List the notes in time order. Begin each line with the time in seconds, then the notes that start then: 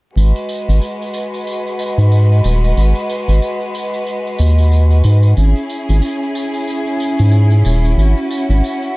0.16 G#1 G#3 F#4 B4, tambourine
0.36 tambourine, triangle
0.49 tambourine
0.69 G#1, tambourine
0.82 tambourine
1.02 tambourine
1.14 tambourine
1.34 tambourine
1.47 tambourine
1.67 tambourine
1.79 tambourine
1.98 G#2, tambourine
2.12 tambourine
2.32 tambourine
2.44 D#1, tambourine
2.64 tambourine
2.77 G#1, tambourine
2.95 tambourine, triangle
3.09 tambourine
3.28 G#1, tambourine
3.42 tambourine
3.61 tambourine
3.75 tambourine
3.94 tambourine
4.07 tambourine
4.26 tambourine
4.39 D#2, tambourine
4.58 tambourine
4.72 tambourine
4.90 tambourine
5.04 G#2, tambourine
5.23 tambourine
5.36 G#1 C#4 E4 G#4, tambourine
5.56 tambourine, triangle
5.70 tambourine
5.89 G#1, tambourine
6.02 tambourine
6.23 tambourine
6.35 tambourine
6.54 tambourine
6.68 tambourine
6.87 tambourine
7.00 tambourine
7.18 G#2, tambourine
7.32 tambourine
7.51 tambourine
7.65 D#1, tambourine
7.84 tambourine
7.97 G#1 F#4, tambourine
8.17 tambourine, triangle
8.30 tambourine
8.49 G#1, tambourine
8.64 tambourine
8.82 tambourine